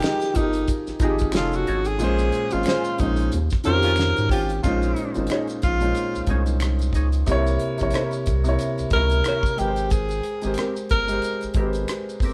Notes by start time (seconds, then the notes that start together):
Already playing: F3 D#4 G4 G#4 A#4 G5
0.03 G#3 D#4 G4, finger snap, snare, maracas
0.20 snare, closed hi-hat, maracas
0.34 G1 F3 D#4 G4, kick, closed hi-hat, maracas
0.39 A#4
0.53 closed hi-hat, maracas
0.68 kick, closed hi-hat, maracas
0.87 G#1, snare, maracas
0.99 G#1 F3 G#3 D#4 G4, kick, closed hi-hat, maracas
1.05 G#4
1.19 kick, closed hi-hat, maracas
1.32 F1 F3 C#4 D#4, finger snap, snare, closed hi-hat, maracas
1.36 F4 G#4 A4
1.52 F#4, closed hi-hat, maracas
1.67 G#1 D#4 A4 C#5, closed hi-hat
1.85 G#4, closed hi-hat, maracas
1.99 A#1 A#2 G#3 C#4, closed hi-hat, maracas
2.04 C5
2.18 maracas
2.32 closed hi-hat, maracas
2.51 G#1 A#2 G#3 C#4 F4, closed hi-hat, maracas
2.56 C5
2.63 C#4 G#4, finger snap, closed hi-hat, maracas
2.68 C5, snare
2.84 maracas
2.98 A#1 A#2 G#3 C#4 D#4, kick, closed hi-hat, maracas
3.03 C5
3.16 closed hi-hat, maracas
3.32 D#2, closed hi-hat, maracas
3.50 F2, kick, snare, closed hi-hat, maracas
3.64 F2 D#3 C#4 F4 F#4 G4 A#4 C5, closed hi-hat, maracas
3.69 C5
3.74 G4
3.82 F3 C#4 F4, closed hi-hat, maracas
3.96 finger snap, snare, closed hi-hat, maracas
4.16 G#2, closed hi-hat, maracas
4.29 G#1 F3 C#4 F4 G4, kick, closed hi-hat, maracas
4.49 closed hi-hat, maracas
4.63 A#1 A#2 G#3 C#4 D#4 F4, kick, closed hi-hat, maracas
4.67 C5
4.82 closed hi-hat, maracas
4.96 closed hi-hat
5.14 G#1 A#2 G#3 C#4 D#4, closed hi-hat, maracas
5.19 C5
5.27 D#4, finger snap, closed hi-hat, maracas
5.32 G#4 C#5, cross-stick
5.47 cross-stick, closed hi-hat, maracas
5.62 A#1 F4, kick, closed hi-hat, maracas
5.80 A#2 G#3 C#4 D#4, closed hi-hat, maracas
5.85 C5
5.95 closed hi-hat, maracas
6.15 C2, maracas
6.27 C2 A#2 G#3 C#4 D#4 G#4, kick, closed hi-hat
6.31 D#4 C5 C#5
6.46 closed hi-hat, maracas
6.60 finger snap, cross-stick, closed hi-hat, maracas
6.79 closed hi-hat, maracas
6.93 C#2 D#4 G#4 C#5, kick, closed hi-hat, maracas
7.12 closed hi-hat, maracas
7.26 C2 C3 A#3 E4, kick, closed hi-hat, maracas
7.32 C#5
7.47 maracas
7.59 closed hi-hat
7.78 C3 A#3 E4, kick, closed hi-hat, maracas
7.82 A#1 C#5
7.91 E4, finger snap, closed hi-hat, maracas
7.95 A#4 C#5, cross-stick
8.11 closed hi-hat, maracas
8.26 C2, kick, closed hi-hat, maracas
8.44 C3 A#3 E4, closed hi-hat, maracas
8.49 C#5
8.59 closed hi-hat, maracas
8.78 C#2, cross-stick, closed hi-hat, maracas
8.90 C#2 C3 A#3 E4 A#4, kick, closed hi-hat
8.95 A#4 C#5
9.10 closed hi-hat, maracas
9.24 E4 A#4 C#5, finger snap, cross-stick, closed hi-hat, maracas
9.43 kick, maracas
9.57 G#1 G#3 G4 A#4 G5, closed hi-hat, maracas
9.62 B4
9.68 C5
9.76 closed hi-hat, maracas
9.90 G#4, kick, closed hi-hat, maracas
10.09 closed hi-hat, maracas
10.23 closed hi-hat
10.42 G#1 G#3 G4 A#4, closed hi-hat, maracas
10.47 C5
10.54 finger snap, closed hi-hat, maracas
10.58 C4 G4 A#4, cross-stick
10.76 cross-stick, maracas
10.89 G1 A#4, kick, closed hi-hat, maracas
11.07 G#3 G4 A#4, closed hi-hat, maracas
11.12 C5
11.22 closed hi-hat, maracas
11.41 G#1, cross-stick, closed hi-hat, maracas
11.54 G#1 G#3 C4 G4, kick, closed hi-hat
11.58 A#4 B4
11.66 C5
11.73 closed hi-hat, maracas
11.88 finger snap, cross-stick, closed hi-hat, maracas
12.09 maracas
12.20 G1 C4, kick, open hi-hat, maracas
12.24 G4 A#4